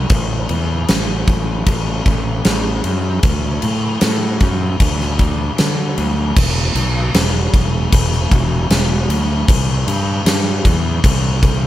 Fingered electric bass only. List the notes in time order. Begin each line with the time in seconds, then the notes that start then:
0.10 A1
0.50 E2
0.89 A1
1.28 A1
1.67 A1
2.06 A1
2.46 A1
2.84 F#2
3.23 D2
3.63 A2
4.02 A2
4.41 F#2
4.80 D2
5.59 D3
5.98 D2
6.37 E1
6.75 B1
7.14 E1
7.54 E1
7.93 E1
8.32 E1
8.70 E1
9.09 D2
9.48 C2
9.87 G2
10.25 G2
10.65 E2
11.04 C2